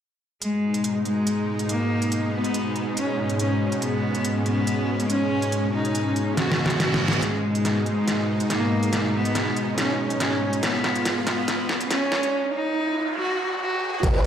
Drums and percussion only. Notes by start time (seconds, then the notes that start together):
0.42 closed hi-hat
0.74 closed hi-hat
0.84 closed hi-hat
1.05 closed hi-hat
1.27 closed hi-hat
1.59 closed hi-hat
1.69 closed hi-hat
2.02 closed hi-hat
2.12 closed hi-hat
2.44 closed hi-hat
2.54 closed hi-hat
2.76 closed hi-hat
2.97 closed hi-hat
3.30 closed hi-hat
3.40 closed hi-hat
3.72 closed hi-hat
3.82 closed hi-hat
4.15 closed hi-hat
4.25 closed hi-hat
4.46 closed hi-hat
4.67 closed hi-hat
5.00 closed hi-hat
5.10 closed hi-hat
5.42 closed hi-hat
5.52 closed hi-hat
5.85 closed hi-hat
5.95 closed hi-hat
6.16 closed hi-hat
6.37 snare, closed hi-hat
6.52 snare
6.66 snare
6.70 closed hi-hat
6.80 snare, closed hi-hat
6.94 snare
7.08 snare
7.13 closed hi-hat
7.22 snare, closed hi-hat
7.55 closed hi-hat
7.65 snare, closed hi-hat
7.86 closed hi-hat
8.08 snare, closed hi-hat
8.40 closed hi-hat
8.50 snare, closed hi-hat
8.83 closed hi-hat
8.93 snare, closed hi-hat
9.25 closed hi-hat
9.35 snare, closed hi-hat
9.56 closed hi-hat
9.78 snare, closed hi-hat
10.10 closed hi-hat
10.20 snare, closed hi-hat
10.53 closed hi-hat
10.63 snare, closed hi-hat
10.84 snare
10.95 closed hi-hat
11.05 snare, closed hi-hat
11.27 snare, closed hi-hat
11.48 snare, closed hi-hat
11.69 snare
11.81 closed hi-hat
11.91 snare, closed hi-hat
12.12 snare
12.23 closed hi-hat
14.03 kick, closed hi-hat, crash